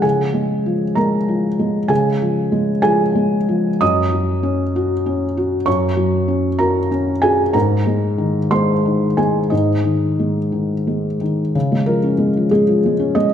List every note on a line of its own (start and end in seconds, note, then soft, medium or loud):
0.00 1.86 C#3 soft
0.00 0.23 F3 soft
0.00 0.92 G#4 soft
0.00 0.96 G#5 medium
0.34 0.84 G#3 soft
0.66 1.16 F3 soft
0.95 1.47 G#3 soft
0.95 1.86 A#4 soft
0.95 1.89 A#5 medium
1.29 1.78 F3 soft
1.59 2.09 G#3 soft
1.88 3.77 C#3 soft
1.88 2.79 G#4 soft
1.88 2.81 G#5 medium
2.22 2.71 F3 soft
2.52 3.02 G#3 soft
2.82 3.35 F3 soft
2.82 3.77 G#4 medium
2.82 3.81 G#5 medium
3.15 3.68 G#3 soft
3.49 3.81 F3 soft
3.81 5.62 F#2 medium
3.81 5.63 D#5 medium
3.81 5.66 D#6 medium
4.12 4.62 F#3 soft
4.43 4.93 C#4 soft
4.76 5.24 F#4 soft
5.06 5.55 C#4 soft
5.37 5.86 F#4 soft
5.66 7.51 F#2 medium
5.66 6.56 C#5 medium
5.66 6.59 C#6 medium
5.97 6.47 F#3 soft
6.28 6.78 C#4 soft
6.59 7.10 F#4 soft
6.59 6.89 A#4 soft
6.59 6.90 A#5 medium
6.91 7.42 C#4 soft
7.22 7.55 F#4 soft
7.22 7.53 G#4 medium
7.22 7.54 G#5 medium
7.53 9.48 G#2 medium
7.53 8.47 A#4 soft
7.53 8.51 A#5 medium
7.87 8.38 G#3 soft
8.18 8.72 D#3 soft
8.51 9.05 G#3 soft
8.51 9.15 C5 medium
8.51 9.18 C6 medium
8.85 9.39 D#3 soft
9.17 9.72 G#3 soft
9.17 9.49 G#4 soft
9.17 9.51 G#5 medium
9.50 11.50 G#2 soft
9.50 11.16 D#4 soft
9.50 11.20 D#5 soft
9.84 10.38 D#3 soft
10.19 10.73 G#3 soft
10.52 11.07 D#3 soft
10.87 11.41 G#3 soft
11.21 11.55 D#3 soft
11.55 13.34 C#3 soft
11.72 11.98 G#3 soft
11.86 12.14 F3 soft
11.86 12.52 A#4 medium
12.04 12.30 C#4 soft
12.18 12.45 G#3 soft
12.37 12.62 F3 soft
12.51 12.78 G#3 soft
12.51 13.15 G#4 medium
12.68 12.94 F3 soft
12.86 13.10 G#3 soft
13.00 13.25 C#4 soft
13.15 13.34 G#3 soft
13.15 13.34 D#5 medium